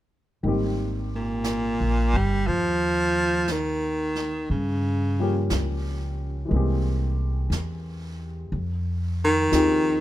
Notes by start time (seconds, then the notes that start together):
0.42 G#1 D#3 G3 A#3, brush sweep
0.46 C4 G4
1.16 A#2
1.44 brush sweep, snare, hi-hat pedal
1.80 A#1
2.13 G1 G3
2.47 D#2 F3, brush sweep
3.48 D#3, brush sweep, snare, hi-hat pedal
4.15 snare
4.49 G2 C#3, brush sweep
5.19 F3 G3 A#3 C#4 G4
5.50 C#2, brush sweep, snare, hi-hat pedal
6.45 E3 G#3
6.50 C2 A#3 C4, brush sweep
6.56 G4
7.50 E2, brush sweep, snare, hi-hat pedal
8.52 F2, brush sweep
9.24 D#3
9.51 D#2 F3 C4 D#4 G4 G#4, brush sweep, snare, hi-hat pedal